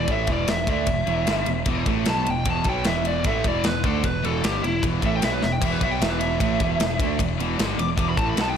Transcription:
0.07 A1 A2 E3 A3, kick, ride
0.12 E5
0.27 E1 E2 B2 E3, kick, ride
0.32 D5
0.48 E1 E2 B2 E5, snare, ride
0.67 D2 D3 A3 D4 E5, kick, ride
0.87 E1 E2 B2, kick, ride
1.06 E1 E2 B2 E3, ride
1.26 G1 G2 D3 G3, snare, ride
1.46 E1 E2 B2, ride
1.66 E1 E2 B2 E3, kick, ride
1.86 A1 A2 E3 A3, kick, ride
2.05 B1 B2 F#3 B3 A5, snare, ride
2.27 E1 E2 B2 G5, ride
2.45 E1 E2 B2 E3, kick, ride
2.50 A5
2.64 B1 B2, kick, ride
2.69 F#3 B3 G5
2.84 E1 E2 B2 E5, snare, ride
2.88 E3
3.05 D5, ride
3.24 A1 A2 E3 A3 E5, kick, ride
3.44 E1 E2 B2 E3 D5, kick, ride
3.64 E1 E2 B2 B4, snare, ride
3.84 D2 D3 A3 D4 A4, kick, ride
4.03 E1 E2 B2 B4, kick, ride
4.23 E1 E2 B2 E3 A4, ride
4.42 G1 G2 D3 G3 G4, snare, ride
4.63 E1 E2 B2 E4, ride
4.82 E1 E2 B2 E3, kick, ride
5.00 A1 A2 E3 A3, kick, ride
5.04 A2 E3 E5
5.15 G5
5.20 B1 B2 F#3 B3, snare, ride
5.24 E5
5.33 B4
5.41 E1 E2 B2 E5, snare
5.52 G5
5.61 E1 E2 B2 E3 E5, kick, ride, crash
5.72 B4
5.81 B1 B2 F#3 B3 E5, kick, ride
5.91 G5
6.00 E1 E2 B2 E3 E5, snare, ride
6.10 B4
6.19 E5, ride
6.39 A1 A2 E3 A3, kick, ride
6.59 E1 E2 B2 E3, kick, ride
6.80 E1 E2 B2, snare, ride
6.99 D2 D3 A3 D4, kick, ride
7.19 E1 E2 B2, kick, ride
7.39 E1 E2 B2 E3, ride
7.58 G1 G2 D3 G3, snare, ride
7.78 E1 E2 B2 D6, ride
7.97 E1 E2 B2 E3 D6, kick, ride
8.09 B5
8.17 A1 A2 E3 A3 A5, kick, ride
8.30 B5
8.36 B1 B2 F#3 B3, snare, ride
8.41 A5
8.49 G5

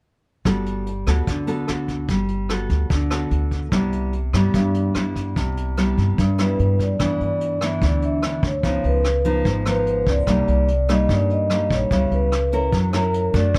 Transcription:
0.45 G1 G3 B3 F#4 A4, kick, cross-stick, closed hi-hat
0.66 closed hi-hat
0.86 closed hi-hat
1.07 D2 B3 F#4 A4, kick, cross-stick, closed hi-hat
1.27 D2 D3, kick, closed hi-hat
1.47 B3 F#4 A4, closed hi-hat
1.68 D2 B3 F#4 A4, cross-stick, closed hi-hat
1.88 kick, closed hi-hat
2.08 G1 G3, kick, closed hi-hat
2.28 closed hi-hat
2.49 B3 F#4 A4, cross-stick, closed hi-hat
2.69 D2, kick, closed hi-hat
2.90 D2 D3, kick, closed hi-hat
3.10 B3 F#4 A4, cross-stick, closed hi-hat
3.31 D2, closed hi-hat
3.51 kick, closed hi-hat
3.72 C2 C3 G3 B3 E4, kick, cross-stick, closed hi-hat
3.92 closed hi-hat
4.13 closed hi-hat
4.33 G2 G3 B3 E4, kick, cross-stick, closed hi-hat
4.54 G2, kick, closed hi-hat
4.74 closed hi-hat
4.95 G3 B3 E4, cross-stick, closed hi-hat
5.16 kick, closed hi-hat
5.36 C2 C3, kick, closed hi-hat
5.57 closed hi-hat
5.77 G3 B3 E4, cross-stick, closed hi-hat
5.98 G2, kick, closed hi-hat
6.18 G2, kick, closed hi-hat
6.38 G3 B3 E4 B4, cross-stick, closed hi-hat
6.59 G2, closed hi-hat
6.79 D5, kick, closed hi-hat
6.99 G2 E3 B3 D4, kick, cross-stick, closed hi-hat
7.21 G2 D5, closed hi-hat
7.41 closed hi-hat
7.61 E3 B3 D4 E5, cross-stick, closed hi-hat
7.81 D2 D3 D5, kick, closed hi-hat
8.02 E5, closed hi-hat
8.22 E3 B3 D4, cross-stick, closed hi-hat
8.43 D2 C#5, kick, closed hi-hat
8.63 C#2 C#3 F3 B3 D#4, kick, closed hi-hat
8.84 C#2 B4, closed hi-hat
9.04 cross-stick, closed hi-hat
9.25 F3 B3 D#4, closed hi-hat
9.45 G#1 G#2, kick, closed hi-hat
9.66 F3 B3 D#4 B4, cross-stick, closed hi-hat
9.86 closed hi-hat
10.06 C#2 D5, kick, closed hi-hat
10.27 C2 C3 G3 A#3 D#4, kick, cross-stick, closed hi-hat
10.48 C2 D5, closed hi-hat
10.68 closed hi-hat
10.89 G3 A#3 D#4 D#5, cross-stick, closed hi-hat
11.09 G2 D5, kick, closed hi-hat
11.30 D#5, closed hi-hat
11.50 G3 A#3 D#4, cross-stick, closed hi-hat
11.70 A#1 C#5, kick, closed hi-hat
11.91 C#2 C#3 G3 B3 E4, kick, closed hi-hat
12.11 C#2 B4, closed hi-hat
12.32 cross-stick, closed hi-hat
12.52 C#4 E4 A#4, closed hi-hat
12.72 F#2 F#3, kick, closed hi-hat
12.93 C#4 E4 A#4, cross-stick, closed hi-hat
13.14 closed hi-hat
13.34 F#2 A3 D4 F#4 D5, kick, closed hi-hat
13.54 B1 B2, kick, cross-stick, closed hi-hat

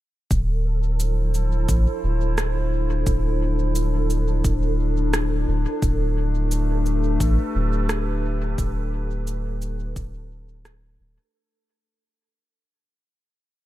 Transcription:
0.31 D1 F3 A4, kick, shaker
0.53 E4 C5
0.65 D4
1.00 shaker
1.34 shaker
1.69 A1, kick, shaker
2.03 D1
2.38 cross-stick, shaker
3.07 D1, kick, shaker
3.75 shaker
4.10 shaker
4.45 D1, kick, shaker
5.14 cross-stick, shaker
5.48 D1
5.82 D1 A3, kick, shaker
6.14 G4
6.38 B4
6.51 shaker
6.86 shaker
7.20 A1, kick, shaker
7.55 D1
7.89 cross-stick, shaker
8.58 D1, kick, shaker
9.27 shaker
9.62 shaker
9.96 D1, kick, shaker
10.65 cross-stick, shaker
11.00 D1

